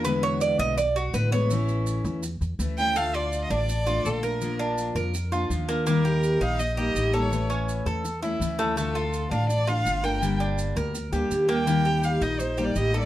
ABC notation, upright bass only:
X:1
M:4/4
L:1/8
Q:1/4=165
K:Aphr
V:1 name="Upright bass" clef=bass
E,,3 =B,,,3 A,,,2- | A,,,3 E,,2 E,, D,,2- | [K:Dphr] D,,3 A,,,3 B,,,2- | B,,,3 F,,3 E,,2- |
E,,3 B,,,3 A,,,2- | A,,,3 =E,,3 D,,2- | D,,3 A,,,3 G,,,2- | G,,,3 D,,2 D,, E,,2- |
E,,3 B,,,3 A,,,2 |]